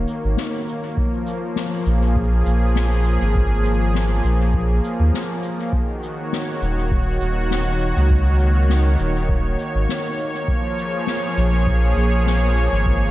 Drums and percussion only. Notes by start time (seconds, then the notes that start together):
0.08 shaker
0.37 snare
0.68 shaker
0.97 kick
1.27 shaker
1.56 snare
1.86 shaker
2.16 kick
2.46 shaker
2.75 snare
3.05 shaker
3.35 kick
3.65 shaker
3.95 snare
4.24 shaker
4.54 kick
4.84 shaker
5.14 snare
5.43 shaker
5.73 kick
6.03 shaker
6.33 snare
6.62 shaker
6.91 kick
7.21 shaker
7.51 snare
7.80 shaker
8.10 kick
8.39 shaker
8.69 snare
8.99 shaker
9.29 kick
9.59 shaker
9.89 snare
10.18 shaker
10.48 kick
10.78 shaker
11.07 snare
11.37 shaker
11.67 kick
11.97 shaker
12.27 snare
12.56 shaker
12.86 kick